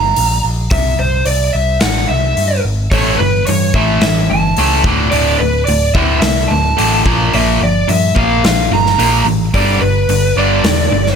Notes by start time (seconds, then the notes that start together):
Already playing: G1 A#5
0.16 A#1, open hi-hat
0.44 A#1
0.70 C2 E5, kick, open hi-hat
0.99 C2 C5
1.25 C2 D5, open hi-hat
1.53 C2 E5
1.80 A1 F#5, snare, open hi-hat
2.09 C2 E5
2.37 G2, open hi-hat
2.65 G#1
2.91 A1 A2 E3 A3 C#5, kick, open hi-hat
3.18 G1 A2 E3 B4
3.47 G2 A2 E3 C#5, open hi-hat
3.74 A1 A2 E3 A3 E5, kick
4.01 A1 A2 E3 E5, snare, open hi-hat
4.30 G1 A2 E3 A5
4.57 C#2 A2 E3 A3, open hi-hat
4.84 D1 D2 A2 D3, kick
5.11 D1 D2 A2 D3 D5, open hi-hat
5.39 D1 D2 A2 B4
5.65 D1 D2 A2 D5, open hi-hat
5.94 D1 D2 A2 D3 E5, kick
6.20 C2 D2 A2 E5, snare, open hi-hat
6.48 D1 D2 A2 A5
6.77 A1 D2 A2 D3, open hi-hat
7.06 A#1 A#2 F3 A#3, kick
7.33 A#1 A#2 F3 A#3 E5, open hi-hat
7.61 G1 A#2 F3 D5
7.88 G2 A#2 F3 E5, open hi-hat
8.15 A#1 A#2 F3 A#3 F5, kick
8.44 A#1 A#2 F3 F5, snare, open hi-hat
8.72 G1 A#2 F3 A#5
8.86 snare
8.99 A#1 A#2 F3 A#3, open hi-hat
9.25 A1 A#2 F3
9.54 G1 G2 D3 G3 D5, kick, open hi-hat
9.80 G1 G2 D3 B4
10.09 G1 G2 D3, open hi-hat
10.36 G1 G2 D3 G3 D5
10.64 E1 G2 D3, snare, open hi-hat
10.92 G1 G2 D3
11.06 snare